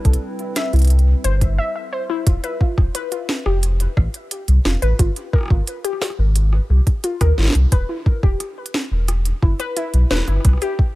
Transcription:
Already playing: G3 C4 E4 B4
0.05 C2 A4, kick, cross-stick, closed hi-hat
0.13 closed hi-hat
0.39 closed hi-hat
0.56 E5, snare, closed hi-hat
0.73 C2 E4, closed hi-hat
0.76 closed hi-hat
0.79 closed hi-hat
0.82 closed hi-hat
0.85 closed hi-hat
0.87 closed hi-hat
0.90 closed hi-hat
0.99 closed hi-hat
1.24 G1 C5, closed hi-hat
1.41 kick, closed hi-hat
1.58 E5
1.76 E5
1.93 C5
2.10 E4
2.27 F1 F4, kick, closed hi-hat
2.44 B4, closed hi-hat
2.61 F4, kick
2.78 F1, kick, cross-stick
2.95 B4, closed hi-hat
3.12 F4, closed hi-hat
3.29 snare
3.46 F1 G4, cross-stick
3.63 closed hi-hat
3.80 closed hi-hat
3.97 A1, kick, cross-stick
4.14 closed hi-hat
4.31 closed hi-hat
4.48 C2, closed hi-hat
4.65 F1 F4, cross-stick, snare
4.82 A1 B4, closed hi-hat
4.99 G#1 F4, kick, closed hi-hat
5.16 closed hi-hat
5.33 A#4, kick, cross-stick
5.36 cross-stick
5.38 cross-stick
5.41 cross-stick
5.43 cross-stick
5.46 cross-stick
5.48 G#1 F4, kick, cross-stick
5.67 closed hi-hat
5.84 G4, cross-stick, closed hi-hat
5.93 cross-stick
6.02 cross-stick, snare
6.10 cross-stick
6.19 G#1
6.36 closed hi-hat
6.53 cross-stick
6.70 C2
6.87 kick, closed hi-hat
7.04 F4, closed hi-hat
7.21 D#2 A#4, kick, cross-stick, closed hi-hat
7.38 G#1 F4, snare
7.40 snare
7.43 snare
7.45 snare
7.48 snare
7.50 snare
7.52 C2, snare, closed hi-hat
7.72 E1 B4, kick, cross-stick, closed hi-hat
7.89 E4
8.06 kick
8.23 E1 G4, kick
8.40 cross-stick, closed hi-hat
8.66 closed hi-hat
8.74 snare
8.91 E1
9.08 cross-stick, closed hi-hat
9.25 closed hi-hat
9.43 G1 E4, kick
9.60 B4, cross-stick, closed hi-hat
9.77 E4, closed hi-hat
9.94 B1, closed hi-hat
10.11 E1 B4, snare
10.13 snare
10.16 snare
10.18 snare
10.20 snare
10.23 snare
10.25 G1 E4, cross-stick, snare, closed hi-hat
10.32 cross-stick
10.36 cross-stick
10.40 cross-stick
10.45 C2, kick, cross-stick, closed hi-hat
10.49 cross-stick
10.53 cross-stick
10.57 cross-stick
10.62 G4, closed hi-hat
10.79 kick

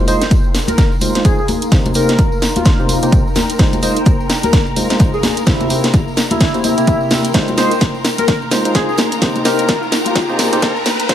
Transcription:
Already playing: D#4 G#4 A#4 G5 A#5 C6
0.08 G#3 D#4 F4 C5 D#5 F5, open hi-hat, tambourine
0.22 snare, closed hi-hat, tambourine
0.31 kick, closed hi-hat, tambourine, high conga
0.44 tambourine
0.55 snare, open hi-hat, tambourine
0.68 A#4, closed hi-hat, tambourine, high conga
0.78 kick, snare, closed hi-hat, tambourine
0.92 tambourine
1.01 G#3 D#4 F4 C5, open hi-hat, tambourine, high conga
1.15 G#3 D#4 F4 C5, snare, closed hi-hat, tambourine
1.25 D#4 G#4, kick, closed hi-hat, tambourine
1.39 G#4, tambourine
1.48 open hi-hat, tambourine, high conga
1.62 closed hi-hat, tambourine
1.69 C3 A#3 D#4 G4 A#4 C5, kick, snare, closed hi-hat, tambourine
1.86 closed hi-hat, tambourine, high conga
1.94 C3 A#3 D#4 G4 A#4 C5, open hi-hat, tambourine
2.09 G5, snare, closed hi-hat, tambourine
2.19 kick, closed hi-hat, tambourine, high conga
2.32 tambourine
2.42 snare, open hi-hat, tambourine
2.56 F4, closed hi-hat, tambourine, high conga
2.65 kick, snare, closed hi-hat, tambourine
2.79 C3 A#3 D#4 G4 C5, tambourine
2.89 open hi-hat, tambourine, high conga
3.02 C3 A#3 D#4 G4 C5, closed hi-hat, tambourine
3.12 kick, closed hi-hat, tambourine
3.27 tambourine
3.36 snare, open hi-hat, tambourine, high conga
3.50 closed hi-hat, tambourine
3.59 G#3 D#4 F4 C5, kick, snare, closed hi-hat, tambourine
3.73 closed hi-hat, tambourine, high conga
3.78 G#4
3.83 G#3 D#4 F4 C5 D#5, open hi-hat, tambourine
3.96 closed hi-hat, tambourine
4.06 F5, kick, closed hi-hat, tambourine, high conga
4.20 tambourine
4.29 snare, open hi-hat, tambourine
4.43 A#4, closed hi-hat, tambourine, high conga
4.53 kick, snare, closed hi-hat, tambourine
4.66 tambourine
4.76 G#3 D#4 F4 C5, open hi-hat, tambourine, high conga
4.90 G#3 D#4 F4 C5, snare, closed hi-hat, tambourine
4.99 G#3 D#4 F4 C5, kick, closed hi-hat, tambourine
5.14 G#4, tambourine
5.23 G#4, snare, open hi-hat, tambourine, high conga
5.37 closed hi-hat, tambourine
5.46 C3 A#3 E4 G4 C5, kick, snare, closed hi-hat, tambourine
5.60 A#4, closed hi-hat, tambourine, high conga
5.70 C3 A#3 E4 G4 C5, open hi-hat, tambourine
5.84 snare, closed hi-hat, tambourine
5.94 kick, closed hi-hat, tambourine, high conga
6.08 C6, tambourine
6.17 snare, open hi-hat, tambourine
6.23 G5
6.30 E4, closed hi-hat, tambourine, high conga
6.40 kick, snare, closed hi-hat, tambourine
6.54 C3 A#3 E4 G4 C5, closed hi-hat, tambourine
6.64 E4, open hi-hat, tambourine, high conga
6.78 C3 A#3 E4 G4 E5, closed hi-hat, tambourine
6.87 C3 A#3 E4 G4 E5, kick, closed hi-hat, tambourine
7.01 tambourine
7.10 snare, open hi-hat, tambourine, high conga
7.25 closed hi-hat, tambourine
7.34 G#3 D#4 F4 A#4 C5 A#5, kick, snare, closed hi-hat, tambourine, riser
7.48 closed hi-hat, tambourine, high conga
7.57 G#3 D#4 F4 C5 D#5, snare, open hi-hat, tambourine
7.71 G#4, closed hi-hat, tambourine
7.81 kick, snare, closed hi-hat, tambourine, high conga
7.94 tambourine
7.99 F5
8.05 snare, open hi-hat, tambourine
8.18 A#4, closed hi-hat, tambourine, high conga
8.28 kick, snare, closed hi-hat, tambourine
8.42 tambourine
8.51 G#3 D#4 F4 C5, snare, open hi-hat, tambourine, high conga
8.65 G#3 D#4 F4 C5, closed hi-hat, tambourine
8.75 G#3 D#4 F4 G#4 C5, kick, snare, closed hi-hat, tambourine
8.89 G#4, tambourine
8.98 snare, open hi-hat, tambourine, high conga
9.12 closed hi-hat, tambourine
9.20 C3 A#3 D#4 G4 A#4 C5, kick, snare, closed hi-hat, tambourine
9.26 G5
9.36 closed hi-hat, tambourine, high conga
9.45 C3 A#3 D#4 G4 A#4 C5, snare, open hi-hat, tambourine
9.59 closed hi-hat, tambourine
9.68 kick, snare, closed hi-hat, tambourine, high conga
9.83 tambourine
9.92 snare, open hi-hat, tambourine
10.06 F4, closed hi-hat, tambourine, high conga
10.15 kick, snare, closed hi-hat, tambourine
10.29 C3 A#3 D#4 G4 C5, tambourine
10.39 snare, open hi-hat, tambourine, high conga
10.52 C3 A#3 D#4 G4 C5, closed hi-hat, tambourine
10.62 kick, snare, closed hi-hat, tambourine
10.76 tambourine
10.86 snare, open hi-hat, tambourine, high conga
11.00 closed hi-hat, tambourine
11.09 G#3 D#4 F4 C5, kick, snare, closed hi-hat, tambourine

